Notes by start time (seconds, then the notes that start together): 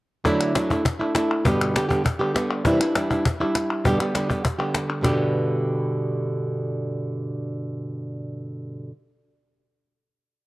0.24 D3 F#3 A3 D4 E4, cajon bass, cajon slap
0.40 cajon slap, clap
0.55 F#3 A3 D4 E4, cajon slap, clap
0.70 A3 D4 E4, cajon bass, clap
0.85 muted nylon-string guitar stroke, cajon bass, clap
0.99 A3 D4 E4, clap
1.15 A3 D4 E4, cajon slap, clap
1.30 cajon slap, clap
1.45 G2 B2 D3 G3 B3 G4, cajon bass
1.61 clap
1.74 D3 G3 B3 G4, cajon slap, clap
1.89 D3 G3 B3 G4, cajon bass, clap
2.04 muted nylon-string guitar stroke, cajon bass, clap
2.19 D3 G3 B3 G4
2.34 D3 G3 B3 G4, cajon slap, clap
2.50 cajon slap, clap
2.65 C3 E3 G3 D4 E4, cajon bass
2.80 G3 D4 E4, clap
2.95 E3 G3 D4 E4, cajon slap, clap
3.10 G3 D4 E4, cajon bass, clap
3.25 muted nylon-string guitar stroke, cajon bass, clap
3.40 G3 D4 E4, clap
3.55 cajon slap, clap
3.70 cajon slap, clap
3.84 G2 B2 D3 G3 B3 G4, cajon bass
4.00 D3 G3 B3 G4, clap
4.14 D3 G3 B3 G4, cajon slap, clap
4.29 D3 G3 B3 G4, cajon bass, clap
4.44 muted nylon-string guitar stroke, cajon bass, clap
4.59 D3 G3 B3 G4, clap
4.74 cajon slap, clap
4.90 clap
5.01 G2 B2 D3 G3 B3 G4, cajon bass, clap